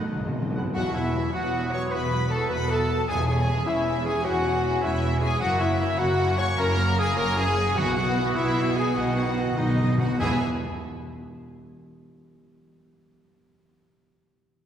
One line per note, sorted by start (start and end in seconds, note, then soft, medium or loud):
0.00 0.68 B2 medium
0.00 0.52 D#3 medium
0.00 0.95 F#3 medium
0.00 0.16 A3 medium
0.00 0.55 D#4 medium
0.00 0.56 D#4 medium
0.00 1.23 F#4 medium
0.00 1.13 B4 soft
0.00 0.52 D#5 medium
0.00 0.53 D#5 medium
0.00 0.54 D#5 medium
0.05 0.11 B2 medium
0.13 0.24 B1 medium
0.13 0.18 B2 loud
0.17 0.25 B2 loud
0.17 0.57 G#3 medium
0.27 0.33 B2 loud
0.34 0.41 B2 loud
0.42 0.49 B2 loud
0.50 0.57 B2 loud
0.55 0.64 B1 medium
0.55 0.63 B2 medium
0.55 0.64 B2 loud
0.55 0.76 F#3 medium
0.55 0.63 B3 medium
0.55 0.62 F#5 medium
0.65 0.72 B2 loud
0.73 1.27 E1 medium
0.73 1.27 E2 medium
0.73 1.91 E2 medium
0.73 1.31 E2 loud
0.73 0.94 E3 medium
0.73 3.05 F#3 medium
0.73 3.05 B3 medium
0.73 0.94 E4 medium
0.73 0.83 F#4 loud
0.73 0.93 F#4 loud
0.73 0.93 F#4 medium
0.73 0.94 E5 medium
0.73 0.80 F#5 loud
0.73 0.94 F#5 loud
0.85 2.00 B2 medium
0.93 1.15 F#3 medium
0.93 2.10 F#3 medium
0.93 1.33 E4 loud
0.93 1.32 E4 medium
0.93 1.34 E4 medium
0.93 1.15 F#4 medium
0.93 1.15 B4 medium
0.93 1.35 E5 medium
0.93 1.34 E5 medium
0.93 1.15 F#5 medium
1.05 1.81 E4 medium
1.14 1.35 E3 medium
1.14 1.35 E4 medium
1.14 1.34 F#4 medium
1.14 1.71 B4 medium
1.14 1.34 E5 medium
1.24 1.61 F#4 medium
1.33 1.86 E1 medium
1.33 1.86 E2 medium
1.33 1.54 F#3 medium
1.33 1.74 F#4 medium
1.33 1.72 F#4 loud
1.33 1.53 F#4 medium
1.33 1.55 B4 medium
1.33 1.51 E5 medium
1.33 1.74 F#5 loud
1.33 1.73 F#5 medium
1.37 1.55 F#5 medium
1.43 2.58 B5 medium
1.53 1.72 E3 medium
1.53 1.72 E4 medium
1.53 1.72 F#4 medium
1.53 1.72 E5 medium
1.62 2.38 F#4 medium
1.70 1.93 F#3 medium
1.70 1.93 F#4 medium
1.70 2.29 B4 medium
1.70 1.93 B4 medium
1.70 1.80 C#5 loud
1.70 1.93 C#5 loud
1.70 1.93 C#5 medium
1.70 1.93 F#5 medium
1.70 1.93 C#6 loud
1.70 1.81 C#6 loud
1.82 2.19 E4 medium
1.90 2.45 E1 medium
1.90 3.07 E2 medium
1.90 2.44 E2 medium
1.90 2.13 E3 medium
1.90 2.13 E4 medium
1.90 2.13 F#4 medium
1.90 2.30 B4 loud
1.90 2.33 B4 loud
1.90 2.32 B4 medium
1.90 2.13 E5 medium
1.90 2.32 B5 medium
1.96 2.33 B5 loud
2.02 3.11 B2 medium
2.11 3.10 F#3 medium
2.11 2.32 F#3 medium
2.11 2.32 F#4 medium
2.11 2.32 B4 medium
2.11 2.33 F#5 medium
2.21 2.97 E4 medium
2.30 2.50 E3 medium
2.30 2.50 E4 medium
2.30 2.51 F#4 medium
2.30 2.50 A4 loud
2.30 2.49 A4 loud
2.30 2.51 A4 loud
2.30 2.51 E5 medium
2.30 2.51 A5 loud
2.30 2.51 A5 medium
2.40 2.78 F#4 medium
2.49 3.03 E1 medium
2.49 3.02 E2 medium
2.49 2.70 F#3 medium
2.49 2.70 F#4 medium
2.49 2.69 B4 loud
2.49 2.71 B4 loud
2.49 2.71 B4 medium
2.49 2.67 E5 medium
2.49 2.72 F#5 medium
2.49 2.72 B5 loud
2.49 2.71 B5 loud
2.59 3.10 B5 medium
2.69 2.90 E3 medium
2.69 2.90 E4 medium
2.69 2.90 F#4 medium
2.69 3.09 A4 loud
2.69 3.07 A4 loud
2.69 3.09 A4 medium
2.69 6.59 E5 medium
2.69 2.90 E5 medium
2.69 3.07 A5 loud
2.69 3.10 A5 loud
2.79 3.10 F#4 medium
2.90 3.10 F#3 medium
2.90 3.10 F#4 medium
2.90 3.09 B4 medium
2.90 3.09 F#5 medium
2.99 6.89 E4 medium
3.07 3.61 E1 loud
3.07 4.23 E2 medium
3.07 3.61 E2 medium
3.07 3.64 E2 loud
3.07 3.27 E3 medium
3.07 5.42 E3 medium
3.07 5.42 C#4 medium
3.07 3.27 E4 medium
3.07 3.26 G#4 loud
3.07 3.17 G#4 loud
3.07 3.28 G#4 medium
3.07 3.28 E5 medium
3.07 3.27 G#5 loud
3.18 4.33 E3 medium
3.26 4.43 G#3 medium
3.26 3.49 G#3 medium
3.26 3.48 C#4 medium
3.26 3.66 G#4 loud
3.26 3.65 G#4 loud
3.26 3.67 G#4 loud
3.26 3.48 C#5 medium
3.26 3.66 G#5 loud
3.26 3.48 G#5 medium
3.26 3.66 G#5 loud
3.37 4.13 C#4 medium
3.47 3.68 E3 medium
3.47 3.68 E4 medium
3.47 3.67 G#4 medium
3.47 3.66 C#5 medium
3.47 3.67 E5 medium
3.58 3.94 G#4 medium
3.66 4.18 E1 medium
3.66 4.18 E2 loud
3.66 3.86 G#3 medium
3.66 3.87 C#4 medium
3.66 4.05 E4 loud
3.66 4.06 E4 loud
3.66 3.84 C#5 medium
3.66 4.04 E5 medium
3.66 4.06 E5 medium
3.70 3.88 C#5 medium
3.70 3.88 G#5 medium
3.76 4.91 C#6 medium
3.85 4.05 E3 medium
3.85 4.05 E4 medium
3.85 4.05 G#4 medium
3.85 4.04 C#5 medium
3.85 4.05 E5 medium
3.95 4.71 G#4 medium
4.04 4.26 G#3 medium
4.04 4.26 C#4 medium
4.04 4.24 G#4 loud
4.04 4.26 G#4 loud
4.04 4.25 G#4 medium
4.04 4.63 C#5 medium
4.04 4.26 C#5 medium
4.04 4.11 G#5 loud
4.04 4.25 G#5 loud
4.04 4.26 G#5 medium
4.15 4.52 C#4 medium
4.22 4.77 E1 loud
4.22 5.43 E2 medium
4.22 4.76 E2 medium
4.22 4.44 E3 medium
4.22 4.44 E4 medium
4.22 4.82 F#4 loud
4.22 4.80 F#4 loud
4.22 4.83 F#4 loud
4.22 4.45 G#4 medium
4.22 4.57 F#5 loud
4.22 4.84 F#5 loud
4.27 4.45 E5 medium
4.34 5.43 E3 medium
4.44 4.64 G#3 medium
4.44 5.43 G#3 medium
4.44 4.64 C#4 medium
4.44 4.65 C#5 medium
4.44 4.64 G#5 medium
4.53 5.30 C#4 medium
4.64 4.82 E3 medium
4.64 4.82 E4 medium
4.64 4.82 G#4 medium
4.64 4.81 C#5 medium
4.64 4.82 E5 medium
4.72 5.10 G#4 medium
4.81 5.35 E1 loud
4.81 5.34 E2 loud
4.81 5.03 G#3 medium
4.81 5.03 C#4 medium
4.81 5.20 E4 loud
4.81 5.22 E4 loud
4.81 5.22 E4 medium
4.81 5.01 C#5 medium
4.81 5.21 E5 loud
4.81 5.22 E5 loud
4.85 5.04 C#5 medium
4.85 5.04 G#5 medium
4.92 6.08 C#6 medium
5.02 5.22 E3 medium
5.02 5.22 E4 medium
5.02 5.23 G#4 medium
5.02 5.21 C#5 medium
5.02 5.23 E5 medium
5.11 5.43 G#4 medium
5.20 5.42 G#3 medium
5.20 5.41 C#4 medium
5.20 5.40 G#4 loud
5.20 5.41 G#4 loud
5.20 5.42 G#4 loud
5.20 5.42 C#5 medium
5.20 5.41 G#5 loud
5.20 5.42 G#5 medium
5.31 5.68 C#4 medium
5.39 5.93 F#1 loud
5.39 6.57 F#2 medium
5.39 5.93 F#2 loud
5.39 7.76 C#3 loud
5.39 7.76 A#3 loud
5.39 5.60 C#4 medium
5.39 5.60 E4 medium
5.39 5.60 F#4 loud
5.39 5.61 F#4 loud
5.39 5.61 E5 medium
5.39 5.61 F#5 loud
5.39 5.49 F#5 loud
5.44 5.61 A#4 medium
5.50 6.67 C#3 medium
5.59 6.77 A#3 medium
5.59 5.80 A#3 medium
5.59 5.99 E4 loud
5.59 6.00 E4 loud
5.59 5.80 F#4 medium
5.59 5.81 C#5 medium
5.59 5.98 E5 loud
5.59 5.99 E5 loud
5.59 5.81 F#5 medium
5.70 6.47 C#4 medium
5.80 6.00 C#4 medium
5.80 6.00 E4 medium
5.80 6.00 A#4 medium
5.80 5.98 C#5 medium
5.80 6.01 E5 medium
5.89 6.27 A#4 medium
5.98 6.51 F#1 loud
5.98 6.51 F#2 loud
5.98 6.19 A#3 medium
5.98 6.37 F#4 loud
5.98 6.19 F#4 medium
5.98 6.38 F#4 loud
5.98 6.39 F#4 loud
5.98 6.17 C#5 medium
5.98 6.19 C#5 medium
5.98 6.38 F#5 loud
5.98 6.19 F#5 medium
6.09 7.26 C#6 medium
6.19 6.37 C#4 medium
6.19 6.38 E4 medium
6.19 6.38 A#4 medium
6.19 6.37 C#5 medium
6.19 6.37 E5 medium
6.28 7.06 A#4 medium
6.37 6.58 A#3 medium
6.37 6.58 F#4 medium
6.37 6.57 C#5 loud
6.37 6.47 C#5 loud
6.37 6.97 C#5 medium
6.37 6.59 C#5 medium
6.37 6.58 C#6 loud
6.37 6.46 C#6 loud
6.41 6.60 F#5 medium
6.48 6.87 C#4 medium
6.58 7.10 F#1 loud
6.58 7.77 F#2 medium
6.58 7.10 F#2 loud
6.58 6.78 C#4 loud
6.58 6.78 E4 medium
6.58 7.00 A#4 loud
6.58 6.97 A#4 loud
6.58 6.79 A#4 medium
6.58 6.79 E5 loud
6.58 6.97 A#5 loud
6.58 6.98 A#5 loud
6.77 6.97 A#3 medium
6.77 7.77 A#3 medium
6.77 6.97 F#4 medium
6.77 6.99 C#5 medium
6.77 6.99 F#5 medium
6.88 7.66 C#4 medium
6.97 7.16 C#4 medium
6.97 7.16 E4 medium
6.97 7.17 G#4 loud
6.97 7.20 G#4 loud
6.97 7.18 G#4 loud
6.97 7.17 A#4 medium
6.97 7.16 C#5 medium
6.97 7.16 E5 medium
6.97 7.19 G#5 loud
6.97 7.18 G#5 loud
7.07 7.46 A#4 medium
7.16 7.69 F#1 loud
7.16 7.69 F#2 loud
7.16 7.36 A#3 medium
7.16 7.37 F#4 medium
7.16 7.36 A#4 loud
7.16 7.37 A#4 loud
7.16 7.36 C#5 medium
7.16 7.37 C#5 medium
7.16 7.38 F#5 medium
7.16 7.38 A#5 loud
7.16 7.37 A#5 loud
7.27 7.78 C#6 medium
7.35 7.55 C#4 medium
7.35 7.55 E4 medium
7.35 7.75 G#4 loud
7.35 7.76 G#4 loud
7.35 7.56 C#5 medium
7.35 7.80 G#5 loud
7.35 7.77 G#5 loud
7.40 7.58 A#4 medium
7.40 7.58 E5 medium
7.47 7.78 A#4 medium
7.55 7.75 A#3 medium
7.55 7.76 F#4 medium
7.55 7.78 C#5 medium
7.55 7.77 C#5 medium
7.55 7.77 F#5 medium
7.67 7.78 C#4 medium
7.75 8.29 B1 loud
7.75 8.28 B2 loud
7.75 8.95 B2 loud
7.75 8.32 B2 loud
7.75 8.94 E3 loud
7.75 7.95 F#3 medium
7.75 9.99 B3 loud
7.75 7.94 E4 medium
7.75 7.94 F#4 medium
7.75 7.94 F#4 loud
7.75 7.96 F#4 loud
7.75 7.94 E5 loud
7.75 7.94 F#5 loud
7.75 7.95 F#5 loud
7.87 9.05 F#3 medium
7.95 8.16 B3 medium
7.95 8.85 B3 medium
7.95 8.35 F#4 loud
7.95 8.16 F#4 medium
7.95 8.37 F#4 loud
7.95 8.36 F#4 loud
7.95 8.15 B4 medium
7.95 8.34 F#5 loud
7.95 8.15 F#5 medium
7.95 8.35 F#5 loud
8.06 8.25 E4 medium
8.15 8.36 F#3 medium
8.15 8.36 E4 medium
8.15 8.35 F#4 medium
8.15 8.36 E5 medium
8.27 8.75 E4 medium
8.35 8.89 B1 loud
8.35 8.89 B2 loud
8.35 8.56 B3 medium
8.35 8.75 E4 loud
8.35 8.56 F#4 medium
8.35 8.55 B4 medium
8.35 8.75 E5 loud
8.35 8.78 E5 loud
8.35 8.56 F#5 medium
8.55 8.75 F#3 medium
8.55 8.75 E4 medium
8.55 8.74 F#4 medium
8.55 8.74 E5 medium
8.66 9.36 B4 medium
8.75 8.97 B3 medium
8.75 8.98 E4 medium
8.75 8.96 F#4 medium
8.75 8.94 G#4 loud
8.75 8.96 G#4 loud
8.75 8.96 B4 medium
8.75 8.96 F#5 medium
8.75 8.96 G#5 loud
8.75 8.98 G#5 loud
8.86 9.16 B3 medium
8.95 9.50 B1 loud
8.95 9.50 B2 loud
8.95 10.22 B2 loud
8.95 9.03 B2 soft
8.95 10.00 D#3 medium
8.95 9.16 D#4 medium
8.95 9.34 F#4 loud
8.95 9.57 F#4 loud
8.95 9.56 F#4 medium
8.95 9.16 F#4 medium
8.95 9.15 D#5 medium
8.95 9.58 F#5 loud
8.95 9.36 F#5 loud
9.04 9.10 B2 medium
9.04 10.22 F#3 medium
9.17 9.25 B2 medium
9.17 10.09 B3 medium
9.17 9.38 B3 medium
9.17 9.36 D#4 medium
9.17 9.37 B4 medium
9.17 9.37 F#5 medium
9.27 9.34 B2 medium
9.27 9.47 D#4 medium
9.35 9.42 B2 medium
9.35 9.58 D#4 medium
9.35 9.58 F#4 medium
9.35 9.88 B4 medium
9.35 9.58 D#5 medium
9.43 9.50 B2 medium
9.48 9.57 B2 medium
9.48 9.99 D#4 medium
9.56 10.13 B1 medium
9.56 10.13 B2 medium
9.56 9.64 B2 medium
9.56 9.79 B3 medium
9.56 9.98 D#4 loud
9.56 9.99 D#4 medium
9.56 10.00 D#4 loud
9.56 9.79 D#4 medium
9.56 9.79 B4 medium
9.56 9.97 D#5 loud
9.56 10.00 D#5 loud
9.56 9.78 D#5 medium
9.56 9.79 F#5 medium
9.65 9.73 B2 medium
9.65 12.73 B5 medium
9.74 9.81 B2 loud
9.74 9.98 D#5 medium
9.79 9.89 B2 loud
9.79 9.99 D#4 medium
9.79 9.99 F#4 medium
9.79 10.23 D#5 medium
9.89 9.97 B2 loud
9.89 10.20 B4 medium
9.98 10.06 B2 loud
9.98 10.20 B3 medium
9.98 10.23 D#4 medium
9.98 10.21 D#4 medium
9.98 10.19 F#4 medium
9.98 10.20 F#4 medium
9.98 10.18 B4 medium
9.98 10.19 F#5 medium
9.98 10.21 F#5 medium
9.98 10.20 F#5 medium
10.07 10.15 B2 loud
10.07 10.19 B3 medium
10.17 10.44 E1 loud
10.17 10.44 E2 loud
10.17 10.44 E3 medium
10.17 10.38 E3 loud
10.17 10.44 B3 medium
10.17 10.38 B3 loud
10.17 10.38 E4 loud
10.17 10.37 G#4 loud
10.17 10.44 B4 loud
10.17 10.43 E5 loud
10.17 10.43 G#5 loud
10.21 10.41 E2 loud
10.21 10.44 B3 medium
10.21 10.44 E4 medium
10.21 10.45 E4 medium
10.21 10.39 G#4 loud
10.21 10.44 B4 medium
10.25 10.44 E5 medium